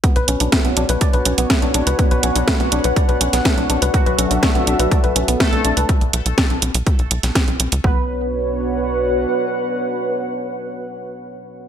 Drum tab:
HH |xxxxxxxxxxxxxxxx|xxxxxxxxxxxxxxxx|xxxxxxxxxxxxxxxx|xxxxxxxxxxxxxxxx|
SD |----o-------o---|----o------oo---|----o-------o---|----o------oo---|
BD |o---o---o---o---|o---o---o---o---|o---o---o---o---|o---o---o---o---|

HH |----------------|----------------|
SD |----------------|----------------|
BD |o---------------|----------------|